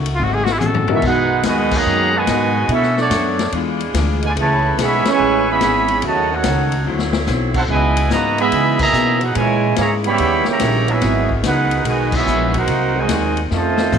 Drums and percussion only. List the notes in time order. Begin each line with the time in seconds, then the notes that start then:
0.06 ride
0.33 mid tom
0.46 snare
0.61 hi-hat pedal, high tom
0.74 floor tom
0.88 floor tom
1.02 kick, crash
1.43 snare, hi-hat pedal, ride
1.71 kick, crash
2.27 snare, hi-hat pedal, ride
2.69 ride
2.83 snare
2.97 snare
3.11 snare, hi-hat pedal, ride
3.39 snare, ride
3.52 ride
3.80 ride
3.94 snare, hi-hat pedal, ride
4.23 ride
4.37 ride
4.79 snare, hi-hat pedal, ride
5.05 snare, ride
5.61 snare, hi-hat pedal, ride
5.88 ride
6.02 ride
6.44 snare, hi-hat pedal, ride
6.72 ride
6.99 snare
7.13 snare
7.27 snare, hi-hat pedal
7.54 kick, crash
7.97 ride
8.10 snare, hi-hat pedal
8.38 ride
8.52 ride
8.79 kick, crash
8.93 hi-hat pedal
9.21 ride
9.35 ride
9.76 snare, hi-hat pedal, ride
10.04 ride
10.18 ride
10.45 snare
10.60 snare, hi-hat pedal, ride
10.88 ride
11.02 snare, ride
11.29 kick
11.44 snare, hi-hat pedal, ride
11.71 ride
11.85 ride
12.12 kick, crash
12.27 hi-hat pedal
12.54 kick, ride
12.67 ride
13.09 snare, hi-hat pedal, ride
13.37 ride
13.51 snare
13.78 snare
13.92 hi-hat pedal, high tom